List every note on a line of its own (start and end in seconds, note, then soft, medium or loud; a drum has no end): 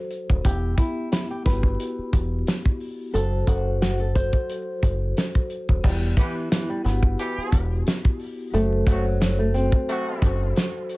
0.00 0.46 F#3 medium
0.00 0.47 F#4 medium
0.00 0.47 A4 medium
0.00 0.46 C5 medium
0.11 closed hi-hat medium
0.30 0.43 D#1 medium
0.30 kick medium
0.42 0.74 E1 loud
0.42 0.66 B3 medium
0.42 0.67 E4 medium
0.42 0.75 G4 medium
0.42 kick loud
0.42 closed hi-hat loud
0.46 0.69 G4 medium
0.77 1.22 B3 medium
0.77 1.08 E4 medium
0.77 1.23 E4 medium
0.77 kick medium
0.77 closed hi-hat medium
0.81 1.25 G4 medium
1.12 1.29 E4 medium
1.12 snare loud
1.12 closed hi-hat loud
1.31 1.44 G4 medium
1.43 1.75 G1 medium
1.43 2.33 B3 medium
1.43 2.34 E4 medium
1.43 2.43 B4 medium
1.43 kick medium
1.43 closed hi-hat medium
1.47 1.54 F#4 medium
1.47 snare soft
1.54 2.39 G4 medium
1.63 kick medium
1.80 closed hi-hat medium
1.98 muted fingered electric bass stroke soft
2.13 2.43 E1 medium
2.13 kick loud
2.13 closed hi-hat medium
2.47 snare loud
2.47 closed hi-hat medium
2.65 kick loud
2.80 open hi-hat soft
3.11 3.44 F#1 loud
3.11 3.36 F#3 medium
3.11 3.37 F#4 medium
3.11 3.44 A4 medium
3.11 3.37 A4 medium
3.15 3.38 C5 medium
3.15 closed hi-hat medium
3.45 4.30 F#1 medium
3.45 3.91 F#3 medium
3.45 3.92 F#4 medium
3.45 3.78 F#4 medium
3.45 kick medium
3.45 closed hi-hat medium
3.50 3.94 C5 medium
3.82 3.98 F#4 medium
3.82 snare loud
3.82 closed hi-hat loud
4.00 4.13 A4 medium
4.15 5.04 F#4 medium
4.15 5.05 A4 medium
4.15 5.12 C5 medium
4.15 5.06 C5 medium
4.15 kick medium
4.15 closed hi-hat medium
4.33 kick medium
4.50 closed hi-hat medium
4.83 5.12 F#1 medium
4.83 kick loud
4.83 closed hi-hat medium
5.17 snare loud
5.17 closed hi-hat medium
5.35 kick medium
5.50 closed hi-hat medium
5.69 5.82 D#1 medium
5.69 kick medium
5.81 6.13 E1 loud
5.81 6.14 G3 medium
5.81 6.06 B3 medium
5.81 6.07 E4 medium
5.81 kick loud
5.81 crash loud
5.86 6.08 G4 medium
6.16 6.33 E3 medium
6.16 6.48 E3 medium
6.16 6.62 B3 medium
6.16 6.33 B3 medium
6.16 6.63 E4 medium
6.16 6.33 G4 medium
6.16 kick medium
6.16 closed hi-hat medium
6.21 6.64 G4 medium
6.52 6.68 E3 medium
6.52 snare loud
6.52 closed hi-hat loud
6.69 6.83 G3 medium
6.82 7.15 G1 medium
6.82 7.72 B3 medium
6.82 7.82 B3 medium
6.82 7.74 E4 medium
6.86 6.93 F#4 medium
6.86 snare soft
6.86 closed hi-hat medium
6.93 7.78 G4 medium
7.03 kick medium
7.18 7.63 E3 loud
7.18 7.63 B3 loud
7.18 7.63 G4 loud
7.18 closed hi-hat loud
7.38 muted fingered electric bass stroke soft
7.52 7.82 E1 loud
7.52 kick loud
7.52 closed hi-hat medium
7.87 snare loud
7.87 closed hi-hat medium
8.05 kick loud
8.20 open hi-hat soft
8.51 8.83 F#1 loud
8.51 8.75 F#3 medium
8.51 8.84 A3 loud
8.51 8.76 F#4 medium
8.51 8.77 A4 medium
8.51 closed hi-hat loud
8.55 8.77 C5 medium
8.84 9.69 F#1 medium
8.84 9.03 C3 medium
8.84 9.31 F#3 medium
8.84 9.18 F#3 medium
8.84 9.03 A3 medium
8.84 9.31 F#4 medium
8.84 9.03 F#4 medium
8.84 9.32 A4 medium
8.84 kick medium
8.84 closed hi-hat medium
8.89 9.33 C5 medium
9.20 9.37 F#3 medium
9.20 snare loud
9.20 closed hi-hat loud
9.39 9.53 A3 medium
9.53 10.43 F#3 medium
9.53 10.52 C4 medium
9.53 10.43 F#4 medium
9.53 10.44 A4 medium
9.53 closed hi-hat medium
9.57 10.45 C5 medium
9.72 kick medium
9.87 10.32 C3 loud
9.87 10.32 A3 loud
9.87 10.32 F#4 loud
9.87 closed hi-hat medium
10.22 10.52 F#1 medium
10.22 kick loud
10.22 closed hi-hat medium
10.56 snare loud
10.56 closed hi-hat medium
10.89 closed hi-hat medium